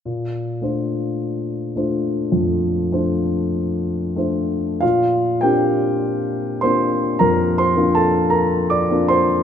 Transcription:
\new Staff \with { instrumentName = "Grand piano" } { \time 4/4 \key bes \major \tempo 4 = 51 << { r1 | <f' f''>8 <g' g''>4 <c'' c'''>8 \tuplet 3/2 { <bes' bes''>8 <c'' c'''>8 <a' a''>8 <bes' bes''>8 <d'' d'''>8 <c'' c'''>8 } | } \\ { bes,8 <a d' f' c''>4 <a d' f' c''>8 f,8 <a d' f' c''>4 <a d' f' c''>8 | bes,8 <bes c' d' f'>4 <bes c' d' f'>8 f,8 <bes c' d' f'>4 <bes c' d' f'>8 | } >> }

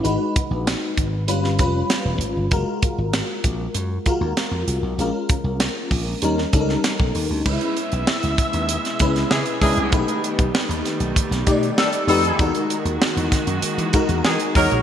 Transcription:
<<
  \new Staff \with { instrumentName = "FM electric piano" } { \time 4/4 \key cis \dorian \tempo 4 = 97 <gis dis' fis' b'>2 <g cis' f' b'>8 <g cis' f' b'>4. | <gis eis' fis' ais'>2 r8 <gis eis' fis' ais'>4. | <gis cis' eis' ais'>2 <g cis' dis' ais'>8 <g cis' dis' a' ais'>4. | <gis cis' dis' e' b'>2 r8 <gis cis' e' b'>4 <gis cis' e' b'>8 |
<a dis' g' b'>2 r8 <a dis' g' d''>4 <a dis' g' b'>8 | <gis dis' fis' ais'>2 r8 <gis dis' fis' ais'>4 <gis dis' fis' cis''>8 | }
  \new Staff \with { instrumentName = "Horn section" } { \time 4/4 \key cis \dorian r1 | r1 | r1 | r2. <e cis' gis'>16 r16 <dis d' gis'>8~ |
<dis d' gis'>16 r2 r8. <dis d' a'>16 r16 <dis' fis' a'>8~ | <dis' fis' a'>16 r2 r8. <dis b gis'>16 r16 <fis dis' ais'>8 | }
  \new Staff \with { instrumentName = "String section" } { \clef bass \time 4/4 \key cis \dorian << { r1 | r1 | r1 | <b, gis e''>1 |
<dis g a>1 | <dis gis fis'>1 | } \\ { r1 | r1 | r1 | b1~ |
b1 | ais1 | } >> }
  \new Staff \with { instrumentName = "Slap bass" } { \clef bass \time 4/4 \key cis \dorian gis,,16 r8 ais,,8 r16 gis,,8 g,,8 f,,8 r16 e,,16 gis,,16 g,,16 | fis,,16 r8 gis,,8 r16 ais,,8 fis,8 r16 dis,16 r16 eis,16 bis,,16 b,,16 | ais,,16 r8 bis,,8 r16 ais,,8 dis,8 cis,8 r16 b,,16 dis,16 d,16 | cis,16 r8 b,,16 r16 cis,16 r16 dis,8 r16 cis,8 cis16 r16 cis,16 bis,,16 |
b,,16 r8 b,,16 r16 dis,16 r16 b,,16 r16 b,,16 r4 eis,8 | e,16 r8 dis,16 r16 e,16 r16 fis,16 r16 e16 r16 e,16 e16 r16 e,16 ais,,16 | }
  \new DrumStaff \with { instrumentName = "Drums" } \drummode { \time 4/4 hh8 <hh bd>8 <hh sn>8 <hh bd>8 hh16 sn16 <hh bd>8 <hh sn>8 hh8 | <hh bd>8 <hh bd>8 <hh sn>8 <hh bd>8 hh8 <hh bd>8 <hh sn>8 hh8 | hh8 <hh bd>8 <hh sn>8 <hho bd>8 hh16 sn16 <hh bd>16 sn16 <hh sn>16 bd16 hho8 | <cymc bd>16 hh16 hh16 hh16 sn16 hh16 <hh bd>16 hh16 hh16 <hh sn>16 <hh bd>16 <hh sn>16 sn16 hh16 <hho bd>16 hh16 |
<hh bd>16 hh16 hh16 <hh bd>16 sn16 hh16 <hh sn>16 hh16 <hh bd>16 <hh sn>16 <hh bd>16 hh16 sn16 hh16 hho16 hh16 | <hh bd>16 hh16 hh16 hh16 sn16 hh16 <hh bd sn>16 hh16 hh16 hh16 <hh bd>16 hh16 sn16 hh16 <hho bd>16 hh16 | }
>>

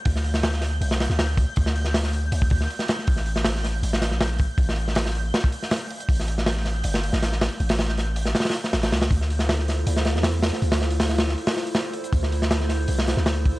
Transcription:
<<
  \new Staff \with { instrumentName = "Synth texture" } { \time 4/4 \key d \minor \tempo 4 = 159 g'''1~ | g'''1~ | g'''1~ | g'''1~ |
g'''1~ | g'''1 | r1 | r1 |
r1 | }
  \new Staff \with { instrumentName = "Ambient pad" } { \time 4/4 \key d \minor r1 | r1 | r1 | r1 |
r1 | r1 | <e' f' a' c''>2~ <e' f' a' c''>8 r4. | <e' f' a' c''>2~ <e' f' a' c''>8 r4. |
<e' f' a' c''>2~ <e' f' a' c''>8 r4. | }
  \new Staff \with { instrumentName = "808-style bass" } { \clef bass \time 4/4 \key d \minor d,2 c,8. d,4 r16 | d,2 d,8 d,8 r4 | a,,2 a,,8. bes,,4 r16 | a,,2 r2 |
a,,2 g,,8. a,,4 r16 | a,,2 r4 a,,8 cis,8 | d,2 d,8. e,4 r16 | d,2 r2 |
d,2 c,8. d,4 r16 | }
  \new DrumStaff \with { instrumentName = "Drums" } \drummode { \time 4/4 <hho bd>16 sn16 hho16 sn16 <hho sn>16 sn16 <hho sn>8 hho16 sn16 <hho sn>16 sn16 <hho sn>8 <hho bd>8 | <hho bd>16 sn16 hho16 sn16 <hho sn>16 sn16 hho8 hho16 bd16 <hho bd>16 sn16 hho16 sn16 <hho sn>16 sn16 | <hho bd>16 sn16 hho16 sn16 <hho sn>16 sn16 <hho sn>8 hho16 sn16 <hho sn>16 sn16 <hho sn>8 <hho bd>8 | <hho bd>16 sn16 hho16 sn16 <hho sn>16 sn16 hho8 <hho sn>16 bd16 hho16 sn16 <hho sn>8 hho16 hh16 |
<hho bd>16 sn16 hho16 sn16 <hho sn>16 sn16 <hho sn>8 hho16 sn16 hho16 sn16 <hho sn>16 sn16 <hho sn>8 | hho16 <hho sn>16 <hho sn>16 sn16 <hho sn>8 hho16 sn16 <hho sn>32 <hho sn>32 <hho sn>32 <hho sn>32 hho16 sn16 <hho sn>16 <hho sn>16 <hho sn>16 <hho sn>16 | <hho bd>16 sn16 hho16 sn16 <hho sn>16 sn16 <hho sn>8 hho16 sn16 <hho sn>16 sn16 <hho sn>8 <hho sn>16 sn16 | hho16 <hho sn>16 sn16 hho16 <hho sn>16 sn16 <hho sn>16 sn16 hho16 <hho sn>16 sn16 hho16 <hho sn>8 hho16 hh16 |
<hho bd>16 sn16 hho16 sn16 <hho sn>16 sn16 <hho sn>8 hho16 sn16 <hho sn>16 sn16 <hho sn>8 <hho bd>8 | }
>>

